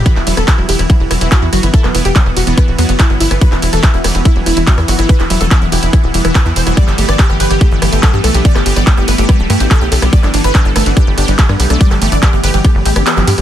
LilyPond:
<<
  \new Staff \with { instrumentName = "Supersaw synth" } { \time 4/4 \key e \minor \tempo 4 = 143 b'16 e'16 e'16 a'16 e'16 e'16 g'16 e'16 e'16 r16 e'16 e'16 fis'16 e'16 fis'16 e'16 | a'16 b16 b16 g'16 b16 b16 fis'16 b16 b16 r16 b16 b16 e'16 b16 e'16 b16 | b'16 e'16 e'16 a'16 e'16 e'16 g'16 e'16 e'16 r16 e'16 e'16 fis'16 e'16 fis'16 e'16 | b'16 e'16 e'16 a'16 e'16 e'16 g'16 e'16 e'16 r16 e'16 e'16 b'16 e'16 c''16 e'16 |
d''16 g'16 g'16 d''16 g'16 g'16 b'16 g'16 g'16 r16 g'16 g'16 a'16 g'16 a'16 g'16 | d''16 g'16 g'16 d''16 g'16 g'16 b'16 g'16 g'16 r16 g'16 g'16 a'16 g'16 a'16 g'16 | d''16 d'16 d'16 b'16 d'16 d'16 a'16 d'16 d'16 r16 d'16 d'16 g'16 d'16 g'16 d'16 | d''16 g'16 g'16 d''16 g'16 g'16 b'16 g'16 g'16 r16 g'16 g'16 g'16 g'16 g'16 g'16 | }
  \new Staff \with { instrumentName = "Synth arpeggio sound" } { \time 4/4 \key e \minor e16 fis'16 fis16 b16 e'16 fis16 e'16 e16 fis16 e16 fis16 e16 e16 fis'16 fis16 b16 | e'16 fis16 e'16 e16 fis16 e16 fis16 e16 e16 fis'16 fis16 b16 e'16 fis16 e'16 e16 | fis16 e16 fis16 e16 e16 fis'16 fis16 b16 e'16 fis16 e'16 e16 fis16 e16 fis16 e16 | e16 fis'16 fis16 b16 e'16 fis16 e'16 e16 fis16 e16 g16 e16 e'16 e16 e16 fis16 |
g16 a'16 a16 d'16 g'16 a16 g'16 g16 a16 g16 a16 a16 g16 a'16 a16 d'16 | g'16 a16 g'16 g16 a16 g16 a16 a16 g16 a'16 a16 d'16 g'16 a16 g'16 g16 | a16 g16 a16 a16 g16 a'16 a16 d'16 g'16 a16 g'16 g16 a16 g16 a16 a16 | g16 a'16 a16 d'16 g'16 a16 g'16 g16 a16 g16 a16 d'16 b16 fis16 g'16 g16 | }
  \new Staff \with { instrumentName = "Synth drone" } { \clef bass \time 4/4 \key e \minor <e b>1~ | <e b>1~ | <e b>1~ | <e b>1~ |
<e b>1~ | <e b>1~ | <e b>1~ | <e b>1 | }
  \new Staff \with { instrumentName = "Analog synth bass" } { \clef bass \time 4/4 \key e \minor r16 e,,16 e,,16 e,,16 r16 e,,16 e,,16 e,,16 r16 e,,16 e,,16 e,,16 r16 e,16 g,,16 g,,16 | r16 e,,16 e,,16 e,,16 r16 e,,16 e,,16 e,,16 r16 d,,16 e,16 fis,,16 r16 g,,16 g,,16 g,,16 | r16 e,,16 e,,16 e,,16 r16 e,,16 e,,16 e,,16 r16 e,,16 e,,16 e,,16 r16 e,16 g,,16 g,,16 | r16 e,,16 e,,16 e,,16 r16 e,,16 e,,16 e,,16 r16 d,,16 e,,16 e,,16 r16 e,16 e,,16 e,,16 |
r16 g,,16 g,,16 g,,16 r16 g,,16 g,,16 g,,16 r16 g,,16 g,,16 g,,16 r16 g,16 b,,16 b,,16 | r16 g,,16 g,,16 g,,16 r16 g,,16 g,,16 g,,16 r16 d,,16 g,16 a,,16 r16 b,,16 b,,16 b,,16 | r16 g,,16 g,,16 g,,16 r16 g,,16 g,,16 g,,16 r16 g,,16 g,,16 g,,16 r16 g,16 b,,16 b,,16 | r16 g,,16 g,,16 g,,16 r16 g,,16 g,,16 g,,16 r16 g,,16 a,,16 g,,16 r16 g,,16 g,16 g,,16 | }
  \new DrumStaff \with { instrumentName = "Drums" } \drummode { \time 4/4 <hh bd cymr ss>16 hc16 <hho cymr>16 <hh ss>16 <hc hh bd cymr>16 ss16 <hho cymr>16 <hh ss>16 <hh bd cymr>8 <hho cymr ss>16 hh16 <hc hh bd cymr ss>8 <hho cymr ss>16 hh16 | <hh bd cymr>16 <hc ss>16 <hho cymr>16 <hh ss>16 <hc hh bd cymr>16 ss16 <hho cymr>16 hh16 <hh bd cymr ss>8 <hho cymr ss>16 hh16 <hc hh bd cymr ss>8 <hho cymr>16 <hh ss>16 | <hh bd cymr>16 <hc ss>16 <hho cymr>16 <hh ss>16 <hc hh bd cymr>8 <hho cymr ss>16 hh16 <hh bd cymr ss>8 <hho cymr ss>16 hh16 <hc hh bd cymr>16 ss16 <hho cymr>16 <hh ss>16 | <hh bd cymr>16 <hc ss>16 <hho cymr>16 hh16 <hc hh bd cymr ss>8 <hho cymr>16 hh16 <hh bd cymr ss>8 <hho cymr>16 <hh ss>16 <hc hh bd cymr>16 <hc ss>16 <hho cymr>16 <hh ss>16 |
<hh bd cymr ss>16 hc16 <hho cymr>16 <hh ss>16 <hc hh bd cymr>16 ss16 <hho cymr>16 <hh ss>16 <hh bd cymr>8 <hho cymr ss>16 hh16 <hc hh bd cymr ss>8 <hho cymr ss>16 hh16 | <hh bd cymr>16 <hc ss>16 <hho cymr>16 <hh ss>16 <hc hh bd cymr>16 ss16 <hho cymr>16 hh16 <hh bd cymr ss>8 <hho cymr ss>16 hh16 <hc hh bd cymr ss>8 <hho cymr>16 <hh ss>16 | <hh bd cymr>16 <hc ss>16 <hho cymr>16 <hh ss>16 <hc hh bd cymr>8 <hho cymr ss>16 hh16 <hh bd cymr ss>8 <hho cymr ss>16 hh16 <hc hh bd cymr>16 ss16 <hho cymr>16 <hh ss>16 | <hh bd cymr>16 <hc ss>16 <hho cymr>16 hh16 <hc hh bd cymr ss>8 <hho cymr>16 hh16 <hh bd cymr ss>8 <hho cymr>16 <hh ss>16 <hc hh cymr>16 <hc ss>16 <hho cymr>16 <hh ss>16 | }
>>